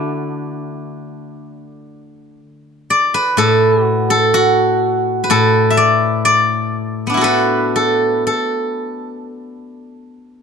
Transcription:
Already playing: D3 A3 D4 E4 F#4
2.90 D5
3.14 B4
3.37 A2 A4
3.84 F#4
4.10 A4
4.34 F#4
5.24 B4
5.30 A2 A4
5.70 E5
5.77 D5
6.25 D5
7.07 B3 D4
7.14 E4 F#4
7.21 A4 B4
7.76 A4
8.27 A4

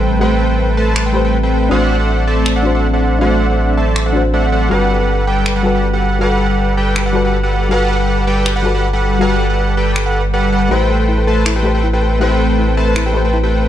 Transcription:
Already playing: A1 G3 A3 C4 G4 A4 B4 C5 G5, impact
0.19 A3 G4 A4 B4 C5 G5
0.23 C5
0.50 A3 A4 B4 C5 G5
0.77 A3 A4 B4 C5 A5
0.96 finger snap
1.06 A3 A4 B4 C5 G5
1.13 A3 G4 B4 C5
1.25 A3 A4 B4 C5 G5
1.43 A3 A4 B4 C5 G5
1.69 A1 F#3 A3 D4 F#4 A4 C5 D5 E5 F#5
2.00 A3 A4 C5 D5 E5 F#5
2.27 A3 A4 C5 D5 E5 A5
2.46 finger snap
2.56 A3 A4 C5 D5 E5 F#5
2.63 D4 F#4 C5
2.75 A3 A4 C5 D5 E5 F#5
2.94 A3 A4 C5 D5 E5 F#5
3.19 A3 D4 F#4 A4 C5 D5 E5 F#5
3.23 C5
3.50 A3 A4 C5 D5 E5 F#5
3.77 A3 A4 C5 D5 E5 A5
3.96 finger snap
4.06 A3 A4 C5 D5 E5 F#5
4.13 D4 F#4
4.17 C5
4.34 A3 A4 C5 D5 E5 F#5
4.52 A3 A4 C5 D5 E5 F#5
4.69 G1 G3 F#4 G4 A4 B4 F#5
5.00 G3 G4 A4 B4 F#5
5.27 G3 G4 A4 B4 G5
5.46 finger snap
5.56 G3 G4 A4 B4 F#5
5.63 G3 F#4 A4
5.67 B4
5.75 G3 G4 A4 B4 F#5
5.93 G3 G4 A4 B4 F#5
6.19 G3 F#4 G4 A4 B4 F#5
6.23 B4
6.50 G3 G4 A4 B4 F#5
6.77 G3 G4 A4 B4 G5
6.96 finger snap
7.06 G3 G4 A4 B4 F#5
7.13 G3 F#4 A4 B4
7.25 G3 G4 A4 B4 F#5
7.43 G3 G4 A4 B4 F#5
7.69 G3 F#4 G4 A4 B4 F#5
7.73 B4
8.00 G3 G4 A4 B4 F#5
8.27 G3 G4 A4 B4 G5
8.46 finger snap
8.56 G3 G4 A4 B4 F#5
8.63 G3 F#4 A4
8.67 B4
8.75 G3 G4 A4 B4 F#5
8.93 G3 G4 A4 B4 F#5
9.19 G3 F#4 G4 A4 B4 F#5
9.23 B4
9.50 G3 G4 A4 B4 F#5
9.77 G3 G4 A4 B4 G5
9.96 finger snap
10.06 G3 G4 A4 B4 F#5
10.34 G3 G4 A4 B4 F#5
10.52 G3 G4 A4 B4 F#5
10.69 A1 A3 C4 E4 G4 A4 B4 C5 G5
10.81 G4
10.90 A4
11.00 A3 A4 B4 C5 G5
11.08 E4
11.18 A4
11.27 A3 A4 B4 C5 A5
11.37 B4
11.46 E4, finger snap
11.56 A3 G4 A4 B4 C5 G5
11.63 A3 G4 A4 B4
11.67 C5
11.75 A3 A4 B4 C5 G5
11.83 E4
11.93 A3 G4 A4 B4 C5 G5
12.02 A4
12.12 B4
12.19 A3 E4 G4 A4 B4 C5 G5
12.23 C5
12.31 G4
12.40 A4
12.50 A3 A4 B4 C5 G5
12.59 E4
12.68 A4
12.77 A3 A4 B4 C5 A5
12.87 B4
12.96 E4, finger snap
13.06 A3 G4 A4 B4 C5 G5
13.13 A3 G4 A4 B4 C5
13.25 A3 A4 B4 C5 G5
13.33 E4
13.43 A3 G4 A4 B4 C5 G5
13.52 A4
13.62 B4

